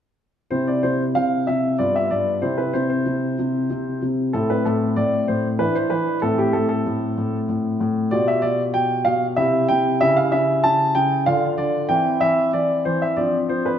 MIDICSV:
0, 0, Header, 1, 2, 480
1, 0, Start_track
1, 0, Key_signature, 0, "major"
1, 0, Tempo, 636943
1, 391, Time_signature, 3, 2, 24, 8
1, 3745, Tempo, 629591
1, 9025, Tempo, 644468
1, 10434, End_track
2, 0, Start_track
2, 0, Title_t, "Grand piano"
2, 0, Program_c, 0, 0
2, 381, Note_on_c, 0, 72, 60
2, 387, Note_on_c, 0, 48, 39
2, 388, Note_on_c, 0, 60, 30
2, 389, Note_on_c, 0, 64, 28
2, 508, Note_off_c, 0, 72, 0
2, 508, Note_on_c, 0, 74, 56
2, 617, Note_off_c, 0, 48, 0
2, 623, Note_on_c, 0, 72, 59
2, 629, Note_on_c, 0, 48, 37
2, 632, Note_off_c, 0, 74, 0
2, 771, Note_off_c, 0, 72, 0
2, 862, Note_off_c, 0, 48, 0
2, 867, Note_on_c, 0, 77, 68
2, 874, Note_on_c, 0, 48, 38
2, 1105, Note_off_c, 0, 48, 0
2, 1108, Note_on_c, 0, 76, 55
2, 1111, Note_off_c, 0, 77, 0
2, 1116, Note_on_c, 0, 48, 36
2, 1324, Note_off_c, 0, 60, 0
2, 1325, Note_off_c, 0, 64, 0
2, 1328, Note_off_c, 0, 76, 0
2, 1345, Note_on_c, 0, 74, 64
2, 1348, Note_on_c, 0, 59, 30
2, 1349, Note_off_c, 0, 48, 0
2, 1350, Note_on_c, 0, 43, 42
2, 1350, Note_on_c, 0, 65, 28
2, 1471, Note_off_c, 0, 74, 0
2, 1474, Note_on_c, 0, 76, 56
2, 1580, Note_off_c, 0, 43, 0
2, 1585, Note_on_c, 0, 74, 62
2, 1591, Note_on_c, 0, 43, 39
2, 1596, Note_off_c, 0, 76, 0
2, 1803, Note_off_c, 0, 59, 0
2, 1804, Note_off_c, 0, 65, 0
2, 1822, Note_on_c, 0, 72, 58
2, 1826, Note_off_c, 0, 43, 0
2, 1826, Note_on_c, 0, 64, 28
2, 1827, Note_on_c, 0, 60, 30
2, 1829, Note_on_c, 0, 48, 41
2, 1831, Note_off_c, 0, 74, 0
2, 1942, Note_on_c, 0, 71, 53
2, 1948, Note_off_c, 0, 72, 0
2, 2054, Note_off_c, 0, 48, 0
2, 2060, Note_on_c, 0, 72, 58
2, 2066, Note_on_c, 0, 48, 38
2, 2068, Note_off_c, 0, 71, 0
2, 2171, Note_off_c, 0, 72, 0
2, 2182, Note_on_c, 0, 72, 53
2, 2295, Note_off_c, 0, 48, 0
2, 2307, Note_on_c, 0, 48, 37
2, 2541, Note_off_c, 0, 48, 0
2, 2555, Note_on_c, 0, 48, 39
2, 2778, Note_off_c, 0, 48, 0
2, 2790, Note_on_c, 0, 48, 37
2, 3020, Note_off_c, 0, 48, 0
2, 3023, Note_off_c, 0, 72, 0
2, 3031, Note_on_c, 0, 48, 38
2, 3233, Note_off_c, 0, 60, 0
2, 3233, Note_off_c, 0, 64, 0
2, 3262, Note_off_c, 0, 48, 0
2, 3265, Note_on_c, 0, 69, 58
2, 3269, Note_on_c, 0, 60, 29
2, 3271, Note_on_c, 0, 45, 40
2, 3272, Note_on_c, 0, 64, 29
2, 3387, Note_off_c, 0, 69, 0
2, 3390, Note_on_c, 0, 71, 59
2, 3499, Note_off_c, 0, 45, 0
2, 3506, Note_on_c, 0, 69, 61
2, 3509, Note_off_c, 0, 71, 0
2, 3511, Note_on_c, 0, 45, 41
2, 3735, Note_off_c, 0, 45, 0
2, 3740, Note_on_c, 0, 74, 67
2, 3745, Note_off_c, 0, 69, 0
2, 3746, Note_on_c, 0, 45, 39
2, 3960, Note_off_c, 0, 74, 0
2, 3977, Note_off_c, 0, 45, 0
2, 3980, Note_on_c, 0, 72, 57
2, 3988, Note_on_c, 0, 45, 41
2, 4127, Note_off_c, 0, 72, 0
2, 4198, Note_off_c, 0, 60, 0
2, 4199, Note_off_c, 0, 64, 0
2, 4218, Note_on_c, 0, 71, 69
2, 4221, Note_off_c, 0, 45, 0
2, 4222, Note_on_c, 0, 52, 46
2, 4223, Note_on_c, 0, 62, 31
2, 4224, Note_on_c, 0, 64, 33
2, 4342, Note_on_c, 0, 72, 61
2, 4343, Note_off_c, 0, 71, 0
2, 4445, Note_off_c, 0, 52, 0
2, 4454, Note_on_c, 0, 71, 64
2, 4457, Note_on_c, 0, 52, 41
2, 4465, Note_off_c, 0, 72, 0
2, 4675, Note_off_c, 0, 62, 0
2, 4675, Note_off_c, 0, 64, 0
2, 4676, Note_off_c, 0, 71, 0
2, 4694, Note_off_c, 0, 52, 0
2, 4698, Note_on_c, 0, 69, 70
2, 4701, Note_on_c, 0, 45, 46
2, 4702, Note_on_c, 0, 60, 31
2, 4702, Note_on_c, 0, 64, 30
2, 4821, Note_on_c, 0, 67, 61
2, 4822, Note_off_c, 0, 69, 0
2, 4930, Note_off_c, 0, 45, 0
2, 4934, Note_on_c, 0, 69, 66
2, 4942, Note_on_c, 0, 45, 39
2, 4944, Note_off_c, 0, 67, 0
2, 5043, Note_off_c, 0, 69, 0
2, 5055, Note_on_c, 0, 69, 66
2, 5177, Note_off_c, 0, 45, 0
2, 5189, Note_on_c, 0, 45, 40
2, 5416, Note_off_c, 0, 45, 0
2, 5427, Note_on_c, 0, 45, 42
2, 5565, Note_off_c, 0, 69, 0
2, 5655, Note_off_c, 0, 45, 0
2, 5666, Note_on_c, 0, 45, 41
2, 5894, Note_off_c, 0, 45, 0
2, 5906, Note_on_c, 0, 45, 43
2, 6117, Note_off_c, 0, 60, 0
2, 6117, Note_off_c, 0, 64, 0
2, 6140, Note_off_c, 0, 45, 0
2, 6140, Note_on_c, 0, 74, 74
2, 6144, Note_on_c, 0, 67, 34
2, 6145, Note_on_c, 0, 47, 50
2, 6147, Note_on_c, 0, 65, 36
2, 6264, Note_off_c, 0, 74, 0
2, 6267, Note_on_c, 0, 76, 64
2, 6369, Note_off_c, 0, 47, 0
2, 6374, Note_on_c, 0, 74, 74
2, 6380, Note_on_c, 0, 47, 44
2, 6387, Note_off_c, 0, 76, 0
2, 6522, Note_off_c, 0, 74, 0
2, 6610, Note_off_c, 0, 47, 0
2, 6617, Note_on_c, 0, 79, 73
2, 6621, Note_on_c, 0, 47, 44
2, 6846, Note_off_c, 0, 47, 0
2, 6853, Note_on_c, 0, 77, 76
2, 6857, Note_on_c, 0, 47, 46
2, 6863, Note_off_c, 0, 79, 0
2, 7003, Note_off_c, 0, 77, 0
2, 7076, Note_off_c, 0, 67, 0
2, 7078, Note_off_c, 0, 65, 0
2, 7096, Note_on_c, 0, 76, 69
2, 7097, Note_off_c, 0, 47, 0
2, 7102, Note_on_c, 0, 64, 38
2, 7103, Note_on_c, 0, 48, 51
2, 7104, Note_on_c, 0, 67, 37
2, 7319, Note_off_c, 0, 76, 0
2, 7338, Note_off_c, 0, 48, 0
2, 7340, Note_on_c, 0, 79, 79
2, 7349, Note_on_c, 0, 48, 47
2, 7558, Note_off_c, 0, 64, 0
2, 7559, Note_off_c, 0, 67, 0
2, 7562, Note_off_c, 0, 79, 0
2, 7584, Note_off_c, 0, 48, 0
2, 7585, Note_on_c, 0, 76, 82
2, 7589, Note_on_c, 0, 64, 36
2, 7590, Note_on_c, 0, 49, 52
2, 7590, Note_on_c, 0, 67, 35
2, 7706, Note_on_c, 0, 77, 72
2, 7708, Note_off_c, 0, 76, 0
2, 7816, Note_off_c, 0, 49, 0
2, 7822, Note_on_c, 0, 76, 75
2, 7828, Note_on_c, 0, 49, 47
2, 7829, Note_off_c, 0, 77, 0
2, 8059, Note_off_c, 0, 49, 0
2, 8065, Note_off_c, 0, 76, 0
2, 8065, Note_on_c, 0, 81, 81
2, 8071, Note_on_c, 0, 49, 48
2, 8296, Note_off_c, 0, 49, 0
2, 8303, Note_on_c, 0, 79, 78
2, 8305, Note_off_c, 0, 81, 0
2, 8307, Note_on_c, 0, 49, 50
2, 8514, Note_off_c, 0, 64, 0
2, 8515, Note_off_c, 0, 67, 0
2, 8520, Note_off_c, 0, 79, 0
2, 8539, Note_off_c, 0, 49, 0
2, 8543, Note_on_c, 0, 77, 77
2, 8549, Note_on_c, 0, 65, 36
2, 8550, Note_on_c, 0, 50, 56
2, 8550, Note_on_c, 0, 62, 37
2, 8688, Note_off_c, 0, 77, 0
2, 8776, Note_off_c, 0, 50, 0
2, 8782, Note_on_c, 0, 74, 69
2, 8787, Note_on_c, 0, 50, 44
2, 8998, Note_off_c, 0, 62, 0
2, 8998, Note_off_c, 0, 65, 0
2, 9001, Note_off_c, 0, 74, 0
2, 9018, Note_on_c, 0, 79, 73
2, 9021, Note_off_c, 0, 50, 0
2, 9024, Note_on_c, 0, 52, 51
2, 9025, Note_on_c, 0, 60, 32
2, 9026, Note_on_c, 0, 64, 35
2, 9251, Note_off_c, 0, 52, 0
2, 9256, Note_on_c, 0, 76, 78
2, 9259, Note_off_c, 0, 79, 0
2, 9262, Note_on_c, 0, 52, 45
2, 9473, Note_off_c, 0, 76, 0
2, 9491, Note_off_c, 0, 52, 0
2, 9499, Note_on_c, 0, 74, 66
2, 9502, Note_on_c, 0, 52, 43
2, 9715, Note_off_c, 0, 74, 0
2, 9732, Note_off_c, 0, 52, 0
2, 9737, Note_on_c, 0, 72, 63
2, 9743, Note_on_c, 0, 52, 44
2, 9859, Note_off_c, 0, 72, 0
2, 9862, Note_on_c, 0, 76, 59
2, 9950, Note_off_c, 0, 60, 0
2, 9951, Note_off_c, 0, 64, 0
2, 9969, Note_on_c, 0, 74, 62
2, 9976, Note_off_c, 0, 52, 0
2, 9977, Note_on_c, 0, 60, 33
2, 9978, Note_on_c, 0, 53, 45
2, 9979, Note_on_c, 0, 62, 33
2, 9982, Note_off_c, 0, 76, 0
2, 10118, Note_off_c, 0, 74, 0
2, 10208, Note_off_c, 0, 53, 0
2, 10214, Note_on_c, 0, 72, 61
2, 10219, Note_on_c, 0, 53, 42
2, 10336, Note_on_c, 0, 71, 58
2, 10341, Note_off_c, 0, 72, 0
2, 10434, Note_off_c, 0, 53, 0
2, 10434, Note_off_c, 0, 60, 0
2, 10434, Note_off_c, 0, 62, 0
2, 10434, Note_off_c, 0, 71, 0
2, 10434, End_track
0, 0, End_of_file